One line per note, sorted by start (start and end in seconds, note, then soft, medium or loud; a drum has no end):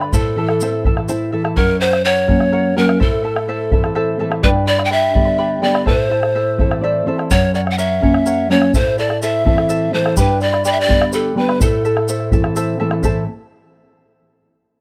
0.00 0.12 D3 soft
0.00 0.13 B4 soft
0.00 0.13 D5 soft
0.00 0.13 B5 soft
0.00 bombo rim soft
0.12 1.52 A2 medium
0.12 0.37 E4 medium
0.12 1.05 A4 medium
0.12 0.37 A4 medium
0.12 0.37 C5 medium
0.12 0.36 E5 medium
0.12 0.37 A5 medium
0.12 bombo rim soft
0.12 bombo low medium
0.12 shaker medium
0.36 0.59 E3 medium
0.36 0.49 E4 medium
0.36 0.49 A4 medium
0.36 0.49 E5 soft
0.36 0.49 A5 medium
0.49 0.61 E4 soft
0.49 0.61 A4 soft
0.49 0.61 A5 soft
0.49 bombo rim soft
0.61 0.84 C4 soft
0.61 0.85 E4 medium
0.61 0.85 A4 medium
0.61 0.85 C5 medium
0.61 0.84 E5 medium
0.61 0.85 A5 medium
0.61 shaker medium
0.73 bombo rim soft
0.84 1.07 E3 soft
0.84 0.97 E4 medium
0.84 0.97 A4 medium
0.84 0.97 E5 medium
0.84 0.96 A5 medium
0.84 bombo low medium
0.97 1.08 E4 soft
0.97 1.08 A4 soft
0.97 1.08 A5 soft
0.97 bombo rim soft
1.08 1.32 E4 soft
1.08 1.31 E4 medium
1.08 1.32 A4 medium
1.08 1.32 C5 medium
1.08 1.31 E5 medium
1.08 1.32 A5 medium
1.08 shaker medium
1.32 1.56 E3 soft
1.32 1.44 E4 medium
1.32 1.44 A4 medium
1.32 1.44 E5 medium
1.32 1.43 A5 medium
1.44 1.56 E4 soft
1.44 1.56 A4 soft
1.44 1.56 A5 medium
1.44 bombo rim medium
1.56 2.96 F#2 medium
1.56 1.79 A#4 medium
1.56 1.80 C#5 medium
1.56 1.81 F#5 medium
1.56 bombo low medium
1.69 bombo rim soft
1.81 1.92 A#4 medium
1.81 2.03 C5 medium
1.81 1.93 C#5 medium
1.81 1.91 F#5 medium
1.81 bombo rim soft
1.93 2.04 C#5 soft
1.93 bombo rim medium
2.05 2.27 A#4 medium
2.05 2.79 C#5 medium
2.05 2.27 C#5 medium
2.05 2.28 F#5 medium
2.27 2.74 F#3 soft
2.27 2.74 A#3 soft
2.27 2.75 C#4 soft
2.27 2.40 A#4 soft
2.27 2.40 C#5 medium
2.27 2.39 F#5 medium
2.27 bombo low medium
2.40 2.52 C#5 soft
2.40 2.52 F#5 soft
2.40 bombo rim soft
2.52 2.75 A#4 medium
2.52 2.76 C#5 medium
2.52 2.76 F#5 medium
2.76 2.99 F#3 soft
2.76 2.99 A#3 soft
2.76 3.00 C#4 soft
2.76 2.88 A#4 medium
2.76 3.03 A#4 medium
2.76 2.87 C#5 medium
2.76 2.86 F#5 medium
2.89 2.99 C#5 soft
2.89 bombo rim medium
3.00 4.40 A2 medium
3.00 3.23 E4 medium
3.00 3.23 A4 medium
3.00 4.20 A4 medium
3.00 3.24 C5 medium
3.00 3.23 E5 medium
3.00 3.24 A5 medium
3.00 bombo low medium
3.12 bombo rim soft
3.24 3.36 E4 medium
3.24 3.36 A4 medium
3.24 3.36 E5 medium
3.24 3.35 A5 medium
3.24 bombo rim soft
3.36 3.47 E4 soft
3.36 3.48 A4 soft
3.36 3.48 A5 soft
3.36 bombo rim medium
3.48 3.71 E4 medium
3.48 3.71 A4 medium
3.48 3.72 C5 medium
3.48 3.71 E5 medium
3.48 3.72 A5 medium
3.71 4.18 E3 soft
3.71 4.18 A3 soft
3.71 4.18 C4 medium
3.71 3.84 E4 medium
3.71 3.84 A4 medium
3.71 3.84 E5 medium
3.71 3.83 A5 medium
3.71 bombo low medium
3.84 3.95 E4 soft
3.84 3.95 A4 soft
3.84 3.95 A5 medium
3.84 bombo rim medium
3.95 4.19 E4 medium
3.95 4.19 A4 medium
3.95 4.19 C5 medium
3.95 4.18 E5 medium
3.95 4.20 A5 medium
4.19 4.43 E3 soft
4.19 4.43 A3 soft
4.19 4.43 C4 medium
4.19 4.31 E4 medium
4.19 4.31 A4 medium
4.19 4.31 E5 medium
4.19 4.30 A5 medium
4.31 4.43 E4 soft
4.31 4.43 A4 soft
4.31 4.43 A5 soft
4.31 bombo rim medium
4.43 5.83 G2 medium
4.43 4.67 G4 medium
4.43 4.66 B4 medium
4.43 4.49 B4 medium
4.43 4.66 D5 medium
4.43 4.65 G5 medium
4.43 4.66 B5 medium
4.43 bombo low medium
4.56 bombo rim soft
4.66 4.78 B4 medium
4.66 4.77 D5 medium
4.66 4.83 D5 medium
4.66 4.79 G5 medium
4.66 4.77 B5 medium
4.66 bombo rim soft
4.78 4.89 B4 soft
4.78 4.90 D5 soft
4.78 4.90 B5 medium
4.78 bombo rim medium
4.85 4.94 G5 medium
4.90 5.15 G4 medium
4.90 5.13 B4 medium
4.90 5.14 D5 medium
4.90 5.63 E5 medium
4.90 5.13 G5 medium
4.90 5.14 B5 medium
5.14 5.61 D3 soft
5.14 5.61 G3 soft
5.14 5.61 B3 medium
5.14 5.26 B4 medium
5.14 5.25 D5 medium
5.14 5.26 G5 soft
5.14 5.24 B5 medium
5.14 bombo low medium
5.25 5.37 B4 soft
5.25 5.37 D5 soft
5.25 5.38 B5 soft
5.38 5.63 G4 medium
5.38 5.61 B4 medium
5.38 5.62 D5 medium
5.38 5.61 G5 medium
5.38 5.62 B5 medium
5.62 5.86 D3 soft
5.62 5.86 G3 soft
5.62 5.86 B3 soft
5.62 5.74 B4 medium
5.62 5.74 D5 medium
5.62 5.85 D5 medium
5.62 5.74 G5 medium
5.62 5.73 B5 medium
5.74 5.86 B4 soft
5.74 5.87 D5 soft
5.74 5.87 B5 soft
5.74 bombo rim medium
5.86 7.05 A2 medium
5.86 6.10 E4 medium
5.86 6.09 A4 medium
5.86 6.10 C5 medium
5.86 7.03 C5 medium
5.86 6.09 E5 medium
5.86 6.10 A5 medium
5.86 bombo low medium
6.10 6.22 E4 medium
6.10 6.21 A4 medium
6.10 6.22 E5 medium
6.10 6.21 A5 medium
6.10 bombo rim soft
6.22 6.34 E4 soft
6.22 6.35 A4 soft
6.22 6.34 A5 soft
6.22 bombo rim medium
6.35 6.59 E4 medium
6.35 6.59 A4 medium
6.35 6.59 C5 medium
6.35 6.58 E5 medium
6.35 6.59 A5 medium
6.58 7.05 E3 soft
6.58 7.05 A3 soft
6.58 7.05 C4 soft
6.58 6.71 E4 medium
6.58 6.70 A4 medium
6.58 6.71 E5 medium
6.58 6.70 A5 medium
6.58 bombo rim soft
6.58 bombo low medium
6.71 6.83 E4 soft
6.71 6.83 A4 soft
6.71 6.83 A5 soft
6.71 bombo rim medium
6.81 7.06 E4 medium
6.81 7.07 A4 medium
6.81 7.07 C5 medium
6.81 7.04 D5 medium
6.81 7.06 E5 medium
6.81 7.07 A5 medium
6.81 bombo rim soft
7.06 7.29 E3 soft
7.06 7.29 A3 soft
7.06 7.30 C4 soft
7.06 7.18 E4 medium
7.06 7.18 A4 medium
7.06 7.29 C5 medium
7.06 7.19 E5 medium
7.06 7.17 A5 medium
7.18 7.30 E4 soft
7.18 7.31 A4 soft
7.18 7.30 A5 soft
7.18 bombo rim medium
7.30 8.70 F#2 medium
7.30 7.53 A#4 medium
7.30 7.53 C#5 medium
7.30 7.54 F#5 medium
7.30 bombo low medium
7.30 shaker medium
7.43 bombo rim soft
7.54 7.66 A#4 medium
7.54 7.66 C#5 medium
7.54 7.61 D5 medium
7.54 7.65 F#5 medium
7.54 bombo rim soft
7.54 shaker soft
7.66 7.77 C#5 soft
7.66 7.77 F#5 soft
7.66 bombo rim medium
7.71 7.80 F#5 medium
7.78 8.01 A#4 medium
7.78 8.02 C#5 medium
7.78 8.52 E5 medium
7.78 8.02 F#5 medium
7.78 shaker medium
8.01 8.48 F#3 soft
8.01 8.48 A#3 soft
8.01 8.48 C#4 medium
8.01 8.14 A#4 medium
8.01 8.14 C#5 medium
8.01 8.13 F#5 medium
8.01 bombo low medium
8.14 8.25 C#5 soft
8.14 8.26 F#5 soft
8.14 bombo rim medium
8.26 8.49 A#4 medium
8.26 8.50 C#5 medium
8.26 8.50 F#5 medium
8.26 shaker medium
8.49 8.73 F#3 soft
8.49 8.73 A#3 soft
8.49 8.73 C#4 medium
8.49 8.62 A#4 medium
8.49 8.74 C#5 medium
8.49 8.62 C#5 medium
8.49 8.61 F#5 medium
8.62 8.74 C#5 soft
8.62 8.74 F#5 soft
8.62 bombo rim medium
8.73 10.13 A2 medium
8.73 8.97 E4 medium
8.73 8.98 A4 medium
8.73 8.98 C5 medium
8.73 9.00 C5 medium
8.73 8.97 E5 medium
8.73 8.98 A5 medium
8.73 bombo low medium
8.73 shaker medium
8.87 bombo rim soft
8.98 9.10 E4 medium
8.98 9.09 A4 medium
8.98 9.22 D5 medium
8.98 9.10 E5 medium
8.98 9.08 A5 medium
8.98 bombo rim soft
8.98 shaker soft
9.09 9.22 E4 soft
9.09 9.22 A4 soft
9.09 9.21 A5 medium
9.09 bombo rim soft
9.22 9.44 E4 medium
9.22 9.45 A4 medium
9.22 9.46 C5 medium
9.22 9.95 E5 medium
9.22 9.44 E5 medium
9.22 9.46 A5 medium
9.22 shaker medium
9.45 9.91 E3 soft
9.45 9.92 A3 soft
9.45 9.92 C4 medium
9.45 9.57 E4 medium
9.45 9.57 A4 medium
9.45 9.57 E5 soft
9.45 9.56 A5 medium
9.45 bombo low medium
9.57 9.68 E4 soft
9.57 9.68 A4 soft
9.57 9.69 A5 soft
9.57 bombo rim medium
9.69 9.92 E4 medium
9.69 9.93 A4 medium
9.69 9.93 C5 medium
9.69 9.92 E5 medium
9.69 9.93 A5 medium
9.69 shaker medium
9.93 10.16 E3 soft
9.93 10.16 A3 soft
9.93 10.17 C4 soft
9.93 10.05 E4 medium
9.93 10.05 A4 medium
9.93 10.17 C5 medium
9.93 10.05 E5 medium
9.93 10.04 A5 medium
10.05 10.17 E4 soft
10.05 10.17 A4 soft
10.05 10.17 A5 soft
10.05 bombo rim medium
10.16 11.56 G2 medium
10.16 10.41 G4 medium
10.16 10.40 B4 medium
10.16 10.44 B4 medium
10.16 10.41 D5 medium
10.16 10.40 G5 medium
10.16 10.41 B5 medium
10.16 bombo low medium
10.16 shaker medium
10.30 bombo rim soft
10.41 10.53 B4 medium
10.41 10.52 D5 medium
10.41 10.65 D5 medium
10.41 10.53 G5 medium
10.41 10.51 B5 medium
10.41 bombo rim soft
10.41 shaker soft
10.53 10.64 B4 soft
10.53 10.64 D5 soft
10.53 10.64 B5 soft
10.53 bombo rim soft
10.65 10.89 G4 medium
10.65 10.88 B4 medium
10.65 10.89 D5 medium
10.65 10.73 D5 medium
10.65 10.88 G5 medium
10.65 10.89 B5 medium
10.65 shaker medium
10.72 10.82 E5 medium
10.80 11.15 D5 medium
10.88 11.34 D3 soft
10.88 11.34 G3 soft
10.88 11.35 B3 soft
10.88 11.01 B4 soft
10.88 11.01 D5 soft
10.88 11.01 G5 medium
10.88 11.00 B5 medium
10.88 bombo low medium
11.01 11.12 B4 soft
11.01 11.13 D5 soft
11.01 11.13 B5 soft
11.01 bombo rim medium
11.13 11.37 G4 medium
11.13 11.37 A4 medium
11.13 11.36 B4 medium
11.13 11.37 D5 medium
11.13 11.36 G5 medium
11.13 11.37 B5 medium
11.13 shaker medium
11.35 11.59 D3 soft
11.35 11.59 G3 soft
11.35 11.59 B3 medium
11.35 11.49 B4 medium
11.35 11.59 B4 medium
11.35 11.48 D5 medium
11.35 11.49 G5 medium
11.35 11.48 B5 medium
11.49 11.61 B4 soft
11.49 11.61 D5 soft
11.49 11.61 B5 medium
11.49 bombo rim medium
11.59 12.99 A2 medium
11.59 11.84 E4 medium
11.59 11.84 A4 medium
11.59 12.52 A4 medium
11.59 11.84 C5 medium
11.59 11.84 E5 medium
11.59 11.85 A5 medium
11.59 bombo low medium
11.59 shaker loud
11.85 11.96 E4 medium
11.85 11.97 A4 medium
11.85 11.96 E5 medium
11.85 11.96 A5 medium
11.85 bombo rim soft
11.85 shaker soft
11.97 12.08 E4 soft
11.97 12.08 A4 soft
11.97 12.08 A5 soft
11.97 bombo rim medium
12.08 12.32 E4 medium
12.08 12.32 A4 medium
12.08 12.32 C5 medium
12.08 12.31 E5 medium
12.08 12.32 A5 medium
12.08 bombo rim soft
12.08 shaker medium
12.20 bombo rim soft
12.31 12.78 E3 soft
12.31 12.78 A3 soft
12.31 12.78 C4 medium
12.31 12.44 E4 medium
12.31 12.43 A4 medium
12.31 12.44 E5 medium
12.31 12.43 A5 medium
12.31 bombo low medium
12.31 shaker soft
12.44 12.55 E4 soft
12.44 12.56 A4 soft
12.44 12.56 A5 soft
12.44 bombo rim medium
12.56 12.79 E4 medium
12.56 12.80 A4 medium
12.56 12.80 C5 medium
12.56 12.78 E5 medium
12.56 12.79 A5 medium
12.56 shaker medium
12.79 13.02 E3 soft
12.79 13.02 A3 soft
12.79 13.02 C4 soft
12.79 12.91 E4 medium
12.79 12.91 A4 medium
12.79 12.91 E5 medium
12.79 12.91 A5 medium
12.79 bombo rim soft
12.91 13.03 E4 soft
12.91 13.04 A4 soft
12.91 13.04 A5 medium
12.91 bombo rim medium
13.03 13.25 A2 medium
13.03 13.25 E3 soft
13.03 13.26 C4 soft
13.03 13.23 E4 medium
13.03 13.26 A4 soft
13.03 13.23 A4 medium
13.03 13.22 C5 medium
13.03 13.22 E5 medium
13.03 13.26 E5 soft
13.03 13.26 A5 medium
13.03 13.23 A5 medium
13.03 bombo low medium
13.03 shaker medium